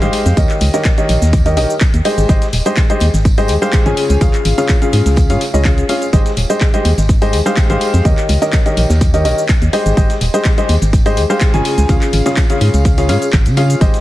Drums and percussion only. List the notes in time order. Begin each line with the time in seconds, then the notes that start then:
0.02 closed hi-hat, shaker
0.13 closed hi-hat, open hi-hat, tambourine
0.26 closed hi-hat, tambourine, shaker
0.37 kick, closed hi-hat, tambourine, shaker
0.49 clap, closed hi-hat, shaker
0.61 closed hi-hat, open hi-hat, tambourine
0.73 snare, closed hi-hat, tambourine, shaker
0.85 kick, snare, clap, closed hi-hat, tambourine, shaker
0.98 closed hi-hat, shaker
1.09 closed hi-hat, open hi-hat, tambourine
1.22 snare, tambourine, shaker
1.33 kick, closed hi-hat, tambourine, shaker
1.45 closed hi-hat, tambourine, shaker
1.57 snare, closed hi-hat, open hi-hat, tambourine
1.69 tambourine, shaker
1.81 kick, snare, clap, closed hi-hat, tambourine, shaker
1.94 closed hi-hat, shaker
2.05 closed hi-hat, open hi-hat, tambourine
2.18 closed hi-hat, tambourine, shaker
2.29 kick, closed hi-hat, tambourine, shaker
2.42 snare, closed hi-hat, shaker
2.53 closed hi-hat, open hi-hat, tambourine
2.65 closed hi-hat, tambourine, shaker
2.77 kick, snare, clap, closed hi-hat, tambourine, shaker
2.90 closed hi-hat, shaker
3.00 closed hi-hat, open hi-hat, tambourine
3.14 closed hi-hat, tambourine, shaker
3.25 kick, closed hi-hat, tambourine, shaker
3.37 closed hi-hat, tambourine, shaker
3.48 closed hi-hat, open hi-hat, tambourine
3.62 tambourine, shaker
3.73 kick, snare, clap, closed hi-hat, tambourine, shaker
3.86 closed hi-hat, shaker
3.97 closed hi-hat, open hi-hat, tambourine
4.09 closed hi-hat, tambourine, shaker
4.21 kick, closed hi-hat, tambourine, shaker
4.34 clap, closed hi-hat, shaker
4.45 closed hi-hat, open hi-hat, tambourine
4.58 snare, closed hi-hat, tambourine, shaker
4.69 kick, snare, clap, closed hi-hat, tambourine, shaker
4.82 closed hi-hat, shaker
4.93 closed hi-hat, open hi-hat, tambourine
5.06 snare, closed hi-hat, tambourine, shaker
5.16 kick, closed hi-hat, tambourine, shaker
5.30 closed hi-hat, tambourine, shaker
5.41 snare, closed hi-hat, open hi-hat, tambourine
5.54 tambourine, shaker
5.65 kick, snare, clap, closed hi-hat, tambourine, shaker
5.78 closed hi-hat, shaker
5.89 closed hi-hat, open hi-hat, tambourine
6.02 closed hi-hat, tambourine, shaker
6.13 kick, closed hi-hat, tambourine, shaker
6.26 snare, closed hi-hat, shaker
6.37 closed hi-hat, open hi-hat, tambourine
6.50 closed hi-hat, tambourine, shaker
6.61 kick, snare, clap, closed hi-hat, tambourine, shaker
6.74 closed hi-hat, shaker
6.85 closed hi-hat, open hi-hat, tambourine
6.98 closed hi-hat, tambourine, shaker
7.09 kick, closed hi-hat, tambourine, shaker
7.22 closed hi-hat, tambourine, shaker
7.33 closed hi-hat, open hi-hat, tambourine
7.46 shaker
7.57 kick, snare, clap, closed hi-hat, tambourine, shaker
7.70 closed hi-hat, shaker
7.81 closed hi-hat, open hi-hat, tambourine
7.94 closed hi-hat, tambourine, shaker
8.05 kick, closed hi-hat, tambourine, shaker
8.18 clap, closed hi-hat, shaker
8.29 closed hi-hat, open hi-hat, tambourine
8.42 snare, closed hi-hat, tambourine, shaker
8.53 kick, snare, clap, closed hi-hat, tambourine, shaker
8.66 closed hi-hat, shaker
8.77 closed hi-hat, open hi-hat, tambourine
8.90 snare, tambourine, shaker
9.01 kick, closed hi-hat, tambourine, shaker
9.14 closed hi-hat, tambourine, shaker
9.25 snare, closed hi-hat, open hi-hat, tambourine
9.38 tambourine, shaker
9.49 kick, snare, clap, closed hi-hat, tambourine, shaker
9.62 closed hi-hat, shaker
9.73 closed hi-hat, open hi-hat, tambourine
9.86 closed hi-hat, tambourine, shaker
9.97 kick, closed hi-hat, tambourine, shaker
10.10 snare, closed hi-hat, shaker
10.21 closed hi-hat, open hi-hat, tambourine
10.34 closed hi-hat, tambourine, shaker
10.45 kick, snare, clap, closed hi-hat, tambourine, shaker
10.58 closed hi-hat, shaker
10.69 closed hi-hat, open hi-hat, tambourine
10.82 closed hi-hat, tambourine, shaker
10.93 kick, closed hi-hat, tambourine, shaker
11.06 closed hi-hat, tambourine, shaker
11.17 closed hi-hat, open hi-hat, tambourine
11.30 tambourine, shaker
11.41 kick, snare, clap, closed hi-hat, tambourine, shaker
11.54 closed hi-hat, shaker
11.65 closed hi-hat, open hi-hat, tambourine
11.78 closed hi-hat, tambourine, shaker
11.89 kick, closed hi-hat, tambourine, shaker
12.01 clap, closed hi-hat, tambourine, shaker
12.13 closed hi-hat, open hi-hat, tambourine
12.26 snare, closed hi-hat, tambourine, shaker
12.37 kick, snare, clap, closed hi-hat, tambourine, shaker
12.50 closed hi-hat, shaker
12.61 open hi-hat, tambourine
12.74 closed hi-hat, tambourine, shaker
12.85 kick, closed hi-hat, tambourine, shaker
12.97 closed hi-hat, tambourine, shaker
13.09 snare, closed hi-hat, open hi-hat, tambourine
13.22 closed hi-hat, tambourine, shaker
13.33 kick, snare, clap, closed hi-hat, tambourine, shaker
13.45 closed hi-hat, tambourine, shaker
13.57 closed hi-hat, open hi-hat, tambourine
13.70 closed hi-hat, tambourine, shaker
13.81 kick, closed hi-hat, tambourine, shaker
13.94 snare, closed hi-hat, shaker